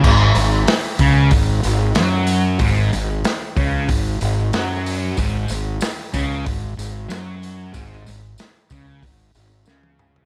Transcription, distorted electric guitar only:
0.04 G#2
0.35 G#2
1.00 C#3
1.32 G#2
1.65 G#2
1.96 F#3
2.62 G#2
2.93 G#2
3.57 C#3
3.89 G#2
4.22 G#2
4.55 F#3
5.18 G#2
5.51 G#2
6.14 C#3
6.45 G#2
6.77 G#2
7.08 F#3
7.73 G#2
8.07 G#2
8.71 C#3
9.04 G#2
9.36 G#2
9.67 C#3

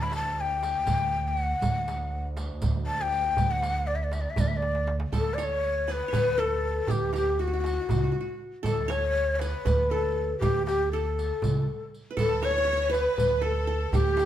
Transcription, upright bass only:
Already playing: D2
0.86 D2
1.62 D2
2.62 D2
3.38 D2
4.37 D2
5.12 D2
6.13 D2
6.90 D2
7.90 C#2
8.64 D2
9.65 D2
10.42 D2
11.42 C#2
12.17 D2
13.18 D2
13.92 D2

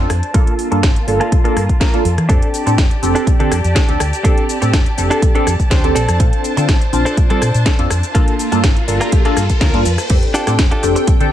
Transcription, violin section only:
Already playing: D4 C5 A5
0.34 A#3 F4
2.29 G4 D5 A5
5.95 D4 C5
8.15 A#3 F4
10.10 D4 A4 G5

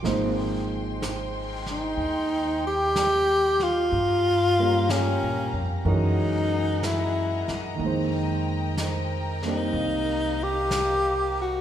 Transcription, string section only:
0.03 G#3 G5 C6
3.91 G4 F5 A#5
5.85 G#4 D#5 F#5 A#5
7.81 A#4 G5
9.75 F5

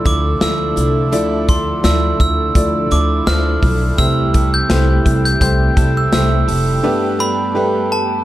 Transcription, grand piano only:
Already playing: D3 F3 A3 E4 D5
0.40 F3 A3 E4 A4
1.11 D3 F3 A3 E4 D5
1.83 F3 A3 E4 D5
2.55 F3 A3 E4 D5
3.26 F3 A3 E4 C5
3.98 C3 A3 E4 G4 C5
4.69 A3 E4 G4 C5
5.41 A3 E4 G4 C5
6.12 A3 E4 G4 C5
6.83 G2 A3 D4 G4 B4
7.54 A3 D4 G4 B4

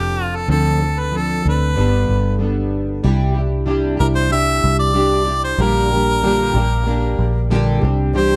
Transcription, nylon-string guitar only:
Already playing: F3 C4 D4 A4
0.48 D3 F3 C4 D4 A4
0.79 C4 D4 A4
1.11 F3 C4 D4 A4
1.43 C4 D4 A4
1.75 G2 D3 G3 B3 D4 A4
2.38 G3 B3 D4 A4
3.03 C3 G3 D4 E4 G4
3.34 D4 E4 G4
3.66 C3 G3 D4 E4 G4
3.97 D4 E4 G4
4.29 G3 D4 E4 G4
4.94 C3 G3 D4 E4 G4
5.25 D4 E4 G4
5.58 A#2 D3 G3 A#3 D4 G4
5.90 G3 A#3 D4 G4
6.22 A#2 D3 G3 A#3 D4 G4
6.54 G3 A#3 D4 G4
6.85 G3 A#3 D4 G4
7.50 A#2 D3 G3 A#3 D4 G4
7.82 G3 C4 D4 G4
8.14 C3 E3 G3 C4 D4 G4

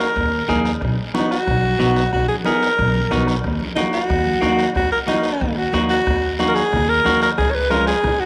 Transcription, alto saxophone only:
Already playing: A#4
1.17 D#4
1.32 F#4
2.13 F#4
2.29 G#4
2.46 A#4
3.76 D#4
3.93 F#4
4.76 F#4
4.92 A#4
5.09 D#4
5.58 F#4
5.74 F#4
5.90 F#4
6.48 A#4
6.55 G#4
6.89 A#4
7.23 A#4
7.38 G#4
7.50 C#5
7.55 B4
7.71 A#4
7.87 G#4
8.20 F#4

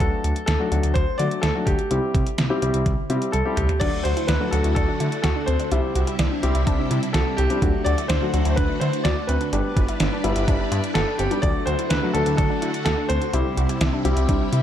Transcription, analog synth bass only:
0.00 D2
0.24 D2
0.48 D2
0.72 D2
0.84 D2
0.96 D2
1.19 D3
1.43 D2
1.67 D2
1.91 C2
2.15 C2
2.38 C2
2.62 C2
2.74 C2
2.86 C2
3.10 C3
3.34 C2
3.57 C2
3.81 D2
4.05 D2
4.29 D2
4.53 D2
4.64 D2
4.76 D2
5.00 D3
5.24 D2
5.48 D2
5.72 C2
5.95 C2
6.19 C2
6.43 C2
6.55 C2
6.67 C2
6.91 C3
7.14 C2
7.38 C2
7.62 D2
7.86 D2
8.10 D2
8.34 D2
8.45 D2
8.58 D2
8.81 D3
9.05 D2
9.29 D2
9.53 G1
9.77 G1
10.00 G1
10.24 G1
10.36 G1
10.48 G1
10.72 G2
10.95 G1
11.19 G1
11.43 D2
11.67 D2
11.91 D2
12.14 D2
12.26 D2
12.38 D2
12.62 D3
12.86 D2
13.10 D2
13.34 C2
13.57 C2
13.81 C2
14.05 C2
14.17 C2
14.29 C2
14.53 C3

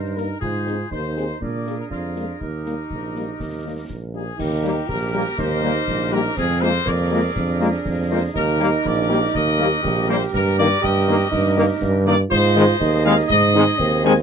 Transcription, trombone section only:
4.63 G3 A#3
5.14 G3 A#3
5.62 G3 A#3
6.13 G3 A#3
6.62 G#3 A#3
7.11 G#3 A#3
7.60 G#3 A#3
8.10 G#3 A#3
8.60 G3 A#3
9.09 G3 A#3
9.58 G3 A#3
10.08 G3 A#3
10.58 D#3 A#3
11.07 D#3 A#3
11.56 D#3 A#3
12.05 D#3 A#3
12.56 D#3 G#3
13.06 D#3 G#3
13.56 D#3 G#3
14.05 D#3 G#3

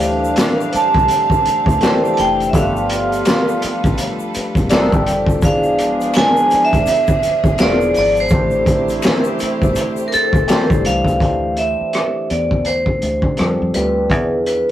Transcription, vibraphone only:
Already playing: F5
0.76 A5
2.14 A5
2.20 G5
2.49 E5
2.56 F5
5.45 F5
6.17 G#5
6.65 E5
6.89 E5
7.61 D5
7.97 D5
8.20 C5
10.08 A#4
10.14 A4
10.86 F5
11.58 E5
12.30 D5
12.66 C5
13.74 B4
14.47 B4

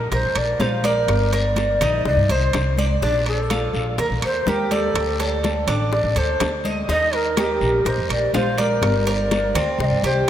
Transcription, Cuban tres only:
Already playing: A#4
0.12 A#4
0.60 F4
0.85 D5
1.33 A#4
1.82 D#4
2.30 C5
2.79 D5
3.02 D4
3.51 F4
3.99 A#4
4.48 G4
4.72 D5
5.20 A4
5.68 D4
6.16 A4
6.65 D#5
6.89 D#4
7.38 G4
7.86 A#4
8.34 F4
8.58 D5
9.07 A#4
9.55 C4
10.04 G4

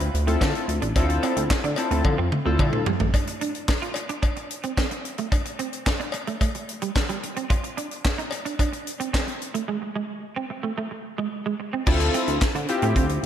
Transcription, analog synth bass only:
0.14 D2
0.41 D3
0.68 D2
0.82 A1
0.96 D2
1.37 D2
1.50 D3
1.64 D3
1.91 D2
2.05 D3
2.19 F2
2.46 D2
2.59 D3
2.73 D2
3.00 A1
11.87 D2
12.28 D2
12.41 D3
12.55 D3
12.82 A2
12.96 D2

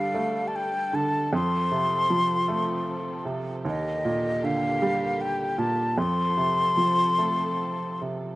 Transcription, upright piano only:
Already playing: G2 D3 G3
0.14 A3
0.93 D3
1.33 F2
1.72 C3
2.10 F3
2.48 A3
3.25 C3
3.65 D#2
4.05 A#2
4.43 D3
4.82 G3
5.58 A#2
5.98 F2
6.37 C3
6.77 F3
7.18 A3
8.01 C3

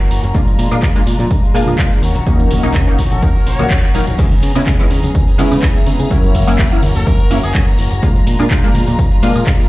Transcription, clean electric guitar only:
Already playing: C#4 F#4
0.10 E3 A#3 C#4 F#4
0.23 A#3 C#4 F#4
0.34 F3 G#3 D4 F4
0.58 F3 G#3 D4 F4
0.82 F3 G#3 D4 F4
0.94 G#3 D4 F4
1.19 G#3 D4 F4
1.43 G#3 D4 F4
1.54 F3 G#3 D4 F4
1.78 F3 G#3 D4 F4
2.02 A#3 C#4 F#4
2.15 C#4 F#4
2.26 A#3 C#4 F#4
2.50 A#3 C#4 F#4
2.74 A#3 C#4 F#4
2.87 C#4 F#4
3.11 C#4 F#4
3.35 C#4 F#4
3.46 A#3 C#4 F#4
3.70 A#3 C#4 F#4
3.94 A#3 C#4 F#4
4.07 C#4 F#4
4.18 E3 B3 C#4 G#4
4.31 B3 C#4 G#4
4.66 E3 B3 C#4 G#4
4.90 E3 B3 C#4 G#4
5.03 B3 C#4 G#4
5.27 B3 C#4 G#4
5.38 E3 B3 C#4 G#4
5.62 E3 B3 C#4 G#4
5.86 E3 B3 C#4 G#4
5.99 B3 C#4 G#4
6.10 E3 A#3 C#4 F#4
6.23 A#3 C#4 F#4
6.58 E3 A#3 C#4 F#4
6.82 E3 A#3 C#4 F#4
6.95 A#3 C#4 F#4
7.19 A#3 C#4 F#4
7.30 E3 A#3 C#4 F#4
7.54 E3 A#3 C#4 F#4
7.78 E3 A#3 C#4 F#4
7.91 A#3 C#4 F#4
8.02 F3 G#3 D4 F4
8.15 G#3 D4 F4
8.50 F3 G#3 D4 F4
8.74 F3 G#3 D4 F4
8.87 G#3 D4 F4
9.11 G#3 D4 F4
9.22 F3 G#3 D4 F4
9.46 F3 G#3 D4 F4

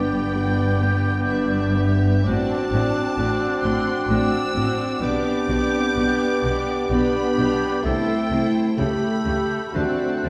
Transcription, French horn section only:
Already playing: B3 D4
2.26 C4 F#4
5.03 G4
5.95 B3
7.84 A3 E4
8.80 G4
9.74 C4 F#4

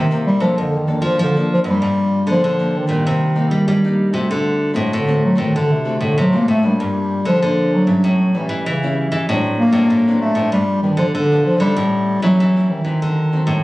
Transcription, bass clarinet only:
0.27 G3
0.41 F3
0.60 D3
0.77 D#3
1.04 F3
1.23 D3
1.54 F3
1.67 G3
2.30 F3
2.77 D#3
4.95 D3
5.25 F#3
5.38 D#3
5.56 D3
5.72 C3
6.02 D3
6.20 F#3
6.36 A#3
6.49 A3
6.65 G3
7.27 F3
7.74 F#3
8.36 E3
8.68 C#3
9.59 A#3
10.21 A3
10.52 G3
10.83 D#3
10.98 F3
11.16 D3
11.45 F3
11.60 G3
12.23 F#3
12.71 D#3

